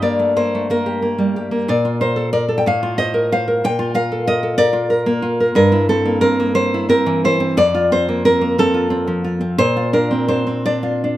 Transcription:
0.00 1.64 G2 medium
0.00 0.35 A#3 soft
0.00 0.85 G4 soft
0.00 0.35 D5 medium
0.19 0.54 A3 soft
0.36 0.69 A#3 medium
0.36 0.69 C5 medium
0.55 1.52 A3 soft
0.70 1.01 A#3 medium
0.70 1.65 A#4 medium
0.86 1.35 G4 soft
1.02 1.50 A#3 soft
1.18 1.68 G3 medium
1.36 1.69 G4 soft
1.51 1.68 A#3 soft
1.68 2.63 A#2 medium
1.68 2.00 D5 medium
1.85 2.66 F4 medium
2.01 2.16 A#4 medium
2.01 2.32 C5 medium
2.16 2.33 A4 soft
2.33 2.48 A#4 medium
2.33 2.57 D5 medium
2.48 2.65 A4 soft
2.58 2.65 G5 medium
2.66 3.61 A2 medium
2.66 2.98 F5 medium
2.83 3.64 F4 medium
2.98 3.32 C5 medium
2.98 3.30 D#5 medium
3.14 3.46 A#4 medium
3.32 3.64 C5 medium
3.32 3.63 F5 medium
3.48 3.64 A#4 soft
3.64 5.50 A#2 medium
3.64 3.95 G5 loud
3.79 4.72 F4 medium
3.94 4.26 A#4 medium
3.94 4.26 F5 medium
4.12 4.42 A4 medium
4.27 4.57 A#4 medium
4.27 4.57 D#5 loud
4.43 4.72 A4 medium
4.58 4.89 A#4 medium
4.58 5.49 D5 loud
4.73 5.21 F4 medium
4.90 5.39 A#4 medium
5.06 5.54 A#3 medium
5.22 5.54 F4 medium
5.40 5.55 A#4 medium
5.55 7.52 G2 medium
5.55 5.86 A#4 loud
5.72 6.71 E4 medium
5.89 6.21 C4 medium
5.89 6.20 A4 loud
6.05 6.38 A#3 medium
6.21 6.54 C4 medium
6.21 6.53 A#4 loud
6.40 7.40 A#3 medium
6.55 6.88 C4 medium
6.55 6.86 C5 loud
6.74 7.23 E4 medium
6.89 7.39 C4 medium
6.89 7.21 A#4 medium
7.06 7.57 E3 medium
7.24 7.57 E4 medium
7.24 7.56 C5 medium
7.40 7.56 C4 medium
7.57 9.56 F2 medium
7.57 7.89 D5 loud
7.74 8.73 F4 medium
7.92 8.24 C4 medium
7.92 8.24 C5 loud
8.09 8.40 A#3 medium
8.25 8.57 C4 medium
8.25 8.57 A#4 loud
8.41 9.42 A#3 medium
8.58 8.89 C4 medium
8.58 9.56 A4 loud
8.74 9.23 F4 medium
8.90 9.39 C4 medium
9.07 9.59 F3 medium
9.24 9.59 F4 medium
9.41 9.59 C4 medium
9.58 11.17 A#2 medium
9.58 9.93 C5 loud
9.76 10.82 F4 medium
9.93 10.27 D4 medium
9.93 10.28 A#4 medium
10.11 10.45 C4 medium
10.28 10.65 D4 medium
10.28 10.65 C5 medium
10.47 11.17 C4 medium
10.66 11.03 D4 medium
10.66 11.17 D5 loud
10.83 11.17 F4 medium
11.04 11.17 D4 medium

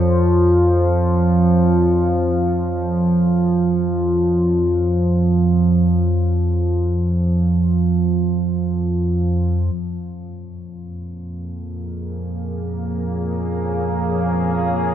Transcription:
0.00 9.74 F2 medium
0.00 9.73 F3 medium
0.00 9.78 C#5 medium
9.74 14.95 F2 medium
9.74 14.95 F3 medium
9.74 14.95 A#3 medium
10.25 14.95 G#4 medium
10.83 14.95 C#5 medium
13.52 14.95 F5 medium

